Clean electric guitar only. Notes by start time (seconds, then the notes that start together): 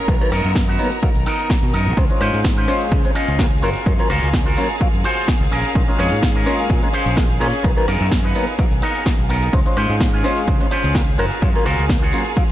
0.31 B3 D#4 A#4
0.68 B3 D#4 F#4
1.26 B3 D#4 A#4
1.73 B3 D#4 A#4
2.20 C#4 F4 C5
2.57 C#4 F4 C5
3.15 C#4 F4 D#5
3.62 F4 F#4 A#4
4.10 F4 F#4 A#4
4.46 F4 F#4 A#4
5.04 F4 F#4 C5
5.51 C#4 G#4 A#4
5.98 C#4 G#4 C#5
6.35 C#4 G#4 A#4
6.93 C#4 G#4 C5
7.40 C#4 G#4 C#5
7.87 B3 D#4 A#4
8.24 B3 D#4 B4
8.82 B3 D#4 A#4
9.29 B3 D#4 A#4
9.77 C#4 F4 C5
10.13 C#4 F4 G#4
10.71 C#4 F4 C5
11.18 F4 F#4 A#4
11.65 F4 F#4 A#4
12.02 F4 F#4 G#4